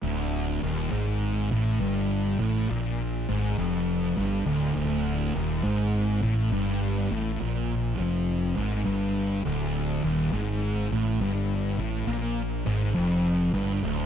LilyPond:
<<
  \new Staff \with { instrumentName = "Distorted electric guitar" } { \clef bass \time 4/4 \key c \major \tempo 4 = 102 d,4 ees,8 gis,4 a,8 g,4 | a,8 bes,4 gis,8 f,4 g,8 d,8 | d,4 ees,8 gis,4 a,8 g,4 | a,8 bes,4 f,4 gis,8 g,4 |
d,4 ees,8 gis,4 a,8 g,4 | a,8 bes,4 gis,8 f,4 g,8 d,8 | }
  \new Staff \with { instrumentName = "Fingered electric bass" } { \clef bass \time 4/4 \key c \major d,,4 ees,,8 gis,,4 a,,8 g,,4 | a,,8 bes,,4 gis,,8 f,,4 g,,8 d,,8 | d,,4 ees,,8 gis,,4 a,,8 g,,4 | a,,8 bes,,4 f,,4 gis,,8 g,,4 |
d,,4 ees,,8 gis,,4 a,,8 g,,4 | a,,8 bes,,4 gis,,8 f,,4 g,,8 d,,8 | }
>>